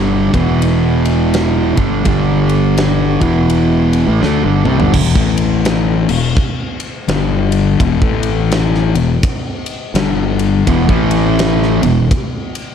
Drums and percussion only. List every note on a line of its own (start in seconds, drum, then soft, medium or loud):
0.34 kick loud
0.34 ride medium
0.62 ride medium
1.05 ride medium
1.34 snare loud
1.34 ride medium
1.77 kick loud
1.77 ride medium
2.05 kick loud
2.05 ride medium
2.49 ride medium
2.78 snare loud
2.78 ride medium
3.21 kick loud
3.21 ride medium
3.50 ride medium
3.93 ride medium
4.23 snare medium
4.65 mid tom medium
4.80 floor tom medium
4.94 kick loud
4.94 crash loud
5.15 kick loud
5.38 ride medium
5.65 snare loud
5.65 ride medium
6.09 crash loud
6.37 kick loud
6.80 ride medium
7.08 snare loud
7.08 ride loud
7.52 ride medium
7.80 kick loud
7.80 ride loud
8.02 kick loud
8.23 ride medium
8.52 snare loud
8.52 ride loud
8.74 snare soft
8.95 ride medium
9.23 kick loud
9.23 ride loud
9.66 ride medium
9.95 snare loud
9.95 ride loud
10.39 ride medium
10.67 kick loud
10.67 ride loud
10.89 kick loud
11.11 ride medium
11.39 snare loud
11.39 ride loud
11.62 snare soft
11.83 ride medium
12.11 kick loud
12.11 ride medium
12.55 ride medium